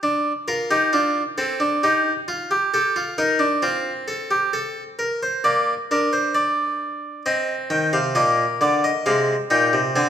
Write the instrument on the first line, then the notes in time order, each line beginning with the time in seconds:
harpsichord
0.03 D4
0.48 F4 A#4
0.71 D#4 G4
0.93 D4 F4
1.38 C4 A4
1.60 D4
1.83 D#4 G4
2.28 F4
2.51 G4
2.74 G4 A4
2.96 F4
3.18 D#4 A#4
3.39 D4
3.62 C4 F4
4.08 A4
4.31 G4
4.53 A4
4.99 A#4
5.23 C5
5.44 A#3 D5
5.91 D4 A#4
6.13 C5
6.35 D5
7.26 C4 D#5
7.70 D#3 G5
7.93 C3 F5
8.15 A#2 A#3 D#5
8.61 D3 D5
8.84 D#5
9.06 C3 G#3 F5
9.50 A#2 D#4 G5
9.73 C3
9.96 D3 C4 G#5